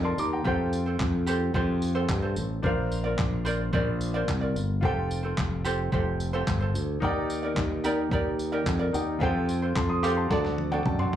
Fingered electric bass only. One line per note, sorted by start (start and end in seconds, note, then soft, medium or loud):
0.00 0.16 F2 medium
0.18 0.43 D#2 medium
0.46 0.96 F2 medium
1.00 1.51 F2 loud
1.54 2.05 F2 loud
2.09 2.35 G2 medium
2.37 2.62 A1 medium
2.64 3.15 A#1 medium
3.19 3.70 A#1 loud
3.74 4.24 A#1 loud
4.28 4.53 C2 medium
4.56 4.83 G1 medium
4.83 5.34 F1 medium
5.38 5.89 F1 loud
5.93 6.43 F1 loud
6.48 6.73 G1 medium
6.74 7.00 D2 medium
7.02 7.53 D#2 medium
7.57 8.08 D#2 loud
8.12 8.62 D#2 loud
8.66 8.91 F2 medium
8.94 9.19 D#2 medium
9.21 9.72 F2 loud
9.76 10.27 F2 loud
10.31 10.81 D2 medium
10.86 11.11 F#2 medium